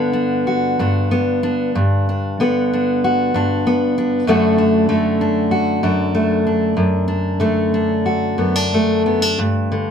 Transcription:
0.00 0.78 G2 medium
0.00 2.38 D3 medium
0.00 1.10 B3 soft
0.00 0.13 D4 soft
0.13 0.80 D4 soft
0.47 1.71 F#4 soft
0.79 1.71 G2 soft
0.79 1.43 D4 soft
1.11 1.71 B3 soft
1.43 2.08 D4 soft
1.75 3.33 G2 medium
2.09 2.73 D4 soft
2.40 4.27 D3 medium
2.40 3.65 B3 medium
2.73 3.35 D4 soft
3.04 4.25 F#4 soft
3.34 4.24 G2 medium
3.34 3.97 D4 medium
3.67 4.25 B3 soft
3.98 4.29 D4 soft
4.27 5.82 F#2 medium
4.27 4.88 D3 soft
4.27 4.88 A3 soft
4.27 4.58 D4 soft
4.27 5.51 F#4 medium
4.58 5.21 D4 soft
4.89 7.39 D3 medium
4.89 6.13 A3 medium
5.21 5.83 D4 soft
5.51 6.74 F#4 soft
5.83 6.74 F#2 medium
5.83 6.46 D4 soft
6.15 6.74 A3 soft
6.47 7.07 D4 soft
6.77 8.37 F#2 medium
7.08 7.73 D4 soft
7.40 9.70 D3 medium
7.40 8.73 A3 soft
7.74 8.38 D4 soft
8.06 9.36 F#4 soft
8.38 9.35 F#2 soft
8.38 8.56 B3 soft
8.56 9.05 D4 soft
8.74 9.36 A3 soft
9.06 9.22 B3 soft
9.22 9.39 D4 soft
9.39 9.91 G2 medium
9.72 9.91 D3 soft

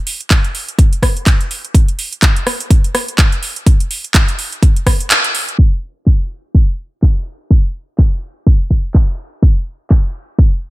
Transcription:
0.07 open hi-hat loud
0.21 closed hi-hat soft
0.31 kick loud
0.31 clap loud
0.31 closed hi-hat medium
0.45 closed hi-hat soft
0.55 open hi-hat medium
0.69 closed hi-hat soft
0.79 kick loud
0.79 closed hi-hat medium
0.93 closed hi-hat soft
1.03 kick medium
1.03 cross-stick medium
1.03 open hi-hat loud
1.17 closed hi-hat soft
1.27 kick loud
1.27 clap loud
1.27 closed hi-hat medium
1.41 closed hi-hat soft
1.51 open hi-hat medium
1.65 closed hi-hat soft
1.75 kick loud
1.75 closed hi-hat medium
1.88 closed hi-hat soft
1.99 open hi-hat loud
2.13 closed hi-hat soft
2.23 kick loud
2.23 clap loud
2.23 closed hi-hat loud
2.36 closed hi-hat soft
2.47 cross-stick medium
2.47 open hi-hat medium
2.60 closed hi-hat soft
2.71 kick loud
2.71 closed hi-hat medium
2.84 closed hi-hat soft
2.95 cross-stick medium
2.95 open hi-hat loud
3.08 closed hi-hat soft
3.19 kick loud
3.19 clap loud
3.19 closed hi-hat medium
3.32 closed hi-hat soft
3.43 open hi-hat medium
3.56 closed hi-hat soft
3.67 kick loud
3.67 closed hi-hat medium
3.80 closed hi-hat soft
3.91 open hi-hat medium
4.04 closed hi-hat soft
4.15 kick loud
4.15 clap loud
4.15 closed hi-hat loud
4.28 closed hi-hat soft
4.39 open hi-hat medium
4.52 closed hi-hat soft
4.63 kick loud
4.63 closed hi-hat loud
4.76 closed hi-hat soft
4.87 kick medium
4.87 cross-stick medium
4.87 open hi-hat loud
5.00 closed hi-hat soft
5.11 clap loud
5.11 closed hi-hat loud
5.24 closed hi-hat soft
5.35 open hi-hat medium
5.49 closed hi-hat soft
5.59 kick loud
6.07 kick loud
6.07 clap loud
6.55 kick loud
7.03 kick loud
7.03 clap loud
7.51 kick loud
7.98 kick loud
7.98 clap loud
8.47 kick loud
8.71 kick medium
8.94 kick loud
8.94 clap loud
9.43 kick loud
9.90 kick loud
9.90 clap loud
10.39 kick loud

